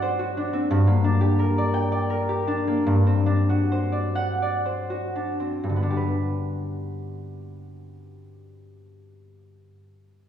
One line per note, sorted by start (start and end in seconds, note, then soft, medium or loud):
0.00 0.69 G2 medium
0.00 0.52 C4 soft
0.00 0.36 D4 soft
0.00 0.18 F#4 soft
0.00 0.73 C5 soft
0.00 1.57 D5 soft
0.00 0.73 F#5 medium
0.19 0.73 F#4 soft
0.37 1.03 D4 soft
0.53 0.73 C4 soft
0.71 2.85 G2 medium
0.87 2.66 A#3 soft
1.04 2.46 D4 medium
1.21 2.28 G4 medium
1.39 2.09 A#4 medium
1.58 1.91 D5 soft
1.74 2.90 G5 medium
1.92 3.91 D5 medium
2.10 2.90 A#4 medium
2.29 2.90 G4 soft
2.47 3.25 D4 medium
2.67 2.90 A#3 soft
2.87 5.62 G2 medium
3.07 5.39 C4 soft
3.26 5.14 D4 soft
3.49 4.89 F#4 soft
3.72 4.64 C5 soft
3.92 4.41 D5 soft
4.15 5.65 F#5 medium
4.42 8.32 D5 soft
4.66 5.66 C5 soft
4.90 5.66 F#4 soft
5.15 5.81 D4 soft
5.40 5.66 C4 soft
5.64 9.54 G2 soft
5.70 9.60 D3 soft
5.76 8.87 B3 soft
5.83 8.85 D4 soft
5.90 8.93 G4 soft
5.96 8.99 B4 soft